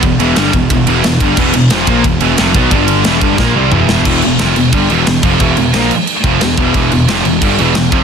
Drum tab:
CC |--------|x-------|--------|xxxxxxxx|
RD |xxxxxxxx|-xxxxxxx|xxxx----|--------|
SD |--o---o-|--o---o-|--o-o--o|--o---o-|
T2 |--------|--------|------o-|--------|
BD |o--oo--o|o--oo--o|o--oo---|o---o--o|

CC |xxxxxxxx|xxxxxxxx|
RD |--------|--------|
SD |--o---o-|--o---o-|
T2 |--------|--------|
BD |o----o-o|o---o--o|